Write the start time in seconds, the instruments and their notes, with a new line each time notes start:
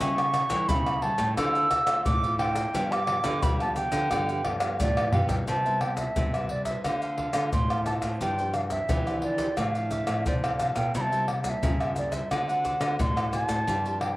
0.00 nylon-string guitar C#3 G3 A3 E4, cavaquinho E4 A4 C#5 G5, flute C#6, pandeiro, maracas, surdo
0.18 cavaquinho A4 C#5 G5, pandeiro, tamborim, maracas
0.34 muted cavaquinho stroke, pandeiro, tamborim, maracas
0.49 nylon-string guitar E3 G3 A3 E4, cavaquinho A4 C#5 G5, pandeiro, maracas, surdo
0.68 nylon-string guitar C#3, cavaquinho E4 A4 C#5 G5, flute B5, pandeiro, maracas, surdo
0.86 pandeiro, tamborim, maracas
1.01 nylon-string guitar G3 A3 E4, cavaquinho E4 A4 C#5 G5, flute A5, pandeiro
1.18 nylon-string guitar A2, cavaquinho A4 C#5 G5, pandeiro, maracas, surdo
1.37 nylon-string guitar D3 A3 C4 F4, cavaquinho D4 A4 C5 F5, flute E6, pandeiro, tamborim, maracas, surdo
1.55 cavaquinho A4 C5 F5, pandeiro, maracas
1.70 muted cavaquinho stroke, pandeiro, tamborim, maracas, surdo
1.86 nylon-string guitar A3 C4 F4, cavaquinho A4 C5 F5, pandeiro, tamborim, maracas
2.05 nylon-string guitar A2, flute D6, pandeiro, maracas, surdo
2.23 nylon-string guitar A3 C4 F4, cavaquinho A4 C5 F5, pandeiro, maracas
2.39 cavaquinho D4 A4 C5 F5, flute G5, pandeiro, tamborim
2.55 cavaquinho A4 C5 F5, pandeiro, maracas, surdo
2.73 nylon-string guitar G2 F3 B3 D4, cavaquinho D4 G4 B4 F5, pandeiro, maracas, surdo
2.91 cavaquinho G4 B4 F5, flute D6, pandeiro, tamborim, maracas
3.07 nylon-string guitar F3 B3 D4, muted cavaquinho stroke, pandeiro, tamborim
3.23 nylon-string guitar D3, cavaquinho G4 B4 F5, pandeiro, maracas, surdo
3.42 nylon-string guitar D3 G3, cavaquinho D4 G4 B4 F5, flute B5, pandeiro, maracas, surdo
3.60 nylon-string guitar F3 B3 D4, flute A5, pandeiro, tamborim, maracas
3.76 cavaquinho D4 G4 B4 F5, flute G5, pandeiro, maracas
3.92 nylon-string guitar D3, cavaquinho G4 B4 F5, pandeiro, maracas, surdo
4.10 nylon-string guitar G2 D3 F3 B3 D4, cavaquinho D4 G4 B4 F5, pandeiro, tamborim, maracas, surdo
4.29 cavaquinho G4 B4 F5, pandeiro, maracas
4.44 nylon-string guitar G2 F3 B3 D4, muted cavaquinho stroke, pandeiro, tamborim, surdo
4.60 cavaquinho G4 B4 F5, pandeiro, tamborim, maracas
4.80 nylon-string guitar A2 D3, flute D5, pandeiro, maracas, surdo
4.97 nylon-string guitar F3 B3 D4, cavaquinho G4 B4 F5, pandeiro, tamborim, maracas
5.12 nylon-string guitar B2, cavaquinho D4 G4 B4 F5, flute F5, surdo, pandeiro
5.29 nylon-string guitar G3 B3 E4, cavaquinho G4 B4 F5, flute G5, pandeiro, maracas, surdo
5.48 nylon-string guitar C3, cavaquinho E4 B4 C5 E5, flute A5, pandeiro, maracas, surdo
5.66 nylon-string guitar G3 B3 E4, cavaquinho B4 C5 E5, pandeiro, maracas
5.81 nylon-string guitar G3 B3 E4, flute G5, muted cavaquinho stroke, pandeiro, tamborim
5.97 flute E5, muted cavaquinho stroke, pandeiro, maracas, surdo
6.16 nylon-string guitar G2 C3 G3 B3 E4, cavaquinho E4 B4 C5 E5, pandeiro, maracas, surdo
6.33 nylon-string guitar G3 E4, cavaquinho B4 C5 E5, pandeiro, tamborim, maracas
6.49 flute D5, pandeiro
6.65 cavaquinho B4 C5 E5, flute E5, pandeiro, maracas, surdo
6.84 nylon-string guitar D3 A3 C4 F4, cavaquinho D4 A4 C5 F5, flute F5, pandeiro, tamborim, maracas, surdo
7.02 cavaquinho A4 C5 F5, pandeiro, maracas
7.17 cavaquinho D4 A4 C5 F5, pandeiro, surdo
7.33 nylon-string guitar D3 A3 C4 F4, cavaquinho A4 C5 F5, pandeiro, tamborim, maracas
7.53 nylon-string guitar A2, flute C6, pandeiro, maracas, surdo
7.70 cavaquinho A4 C5 F5, pandeiro, tamborim, maracas
7.85 nylon-string guitar A3 C4 F4, cavaquinho D4 A4 C5 F5, flute A5, pandeiro, tamborim, maracas, surdo
8.01 nylon-string guitar A2, cavaquinho A4 C5 F5, pandeiro, maracas, surdo
8.20 nylon-string guitar G2 F3 C4 D4, cavaquinho F4 G4 C5 D5, flute G5, pandeiro, maracas, surdo
8.38 nylon-string guitar F3 C4 D4, cavaquinho G4 C5 D5, pandeiro, maracas
8.54 flute F5, muted cavaquinho stroke, pandeiro, tamborim, maracas
8.70 nylon-string guitar F3 C4 D4, flute E5, muted cavaquinho stroke, pandeiro, maracas, surdo
8.89 nylon-string guitar D3 E3, cavaquinho F4 G4 C5 D5, pandeiro, maracas, surdo
9.06 cavaquinho G4 C5 D5, pandeiro, tamborim, maracas
9.22 nylon-string guitar F3 C4 D4, flute D5, pandeiro
9.38 cavaquinho G4 C5 D5, pandeiro, maracas, surdo
9.57 nylon-string guitar A2 F3 C4 D4, cavaquinho D4 A4 D5 F5, flute F5, pandeiro, tamborim, maracas, surdo
9.75 nylon-string guitar F3 C4 D4, cavaquinho A4 D5 F5, pandeiro, maracas
9.91 cavaquinho D4 A4 D5 F5, flute E5, pandeiro, maracas, surdo
10.07 nylon-string guitar A2 F3 C4 D4, cavaquinho A4 D5 F5, pandeiro, tamborim, maracas
10.26 nylon-string guitar A2 C3, flute D5, pandeiro, maracas, surdo
10.43 cavaquinho A4 D5 F5, pandeiro, tamborim, maracas
10.59 nylon-string guitar F3 C4 D4, cavaquinho D4 A4 D5 F5, flute F5, pandeiro, tamborim, maracas
10.76 nylon-string guitar B2, cavaquinho A4 D5 F5, flute G5, pandeiro, maracas, surdo
10.94 nylon-string guitar C3 G3 A#3 E4, cavaquinho E4 A#4 C5 E5, flute B5, pandeiro, maracas, surdo
11.01 flute A5
11.11 nylon-string guitar G3 A#3 E4, cavaquinho A#4 C5 E5, pandeiro, maracas
11.28 muted cavaquinho stroke, pandeiro, tamborim
11.43 nylon-string guitar G3 A#3 E4, flute F#5, muted cavaquinho stroke, pandeiro, maracas, surdo
11.50 flute E5
11.62 nylon-string guitar G2 C#3, cavaquinho E4 A#4 C5 E5, pandeiro, maracas, surdo
11.80 cavaquinho A#4 C5 E5, pandeiro, tamborim, maracas
11.96 nylon-string guitar G3 A#3 E4, flute D5, pandeiro, maracas
12.12 cavaquinho A#4 C5 E5, flute E5, pandeiro, maracas, surdo
12.31 nylon-string guitar D3 A3 C4 F#4, cavaquinho D4 C5 D5 F#5, flute F#5, pandeiro, tamborim, maracas, surdo
12.48 nylon-string guitar A3 C4 F#4, cavaquinho C5 D5 F#5, pandeiro, maracas
12.64 cavaquinho D4 C5 D5 F#5, pandeiro, maracas, surdo
12.80 nylon-string guitar D3 A3 C4 F#4, cavaquinho C5 D5 F#5, pandeiro, tamborim, maracas
12.99 nylon-string guitar A2, flute C6, pandeiro, maracas, surdo
13.16 cavaquinho C5 D5 F#5, pandeiro, tamborim, maracas
13.31 nylon-string guitar A3 C4 F#4, cavaquinho D4 C5 D5 F#5, flute A5, pandeiro, tamborim, maracas
13.48 nylon-string guitar A2, cavaquinho C5 D5 F#5, pandeiro, maracas, surdo
13.67 nylon-string guitar G2 F3 C4 D4, cavaquinho F4 G4 C5 D5, pandeiro, maracas, surdo
13.85 nylon-string guitar F3 C4 D4, cavaquinho G4 C5 D5, pandeiro, maracas
14.01 flute G5, muted cavaquinho stroke, pandeiro, tamborim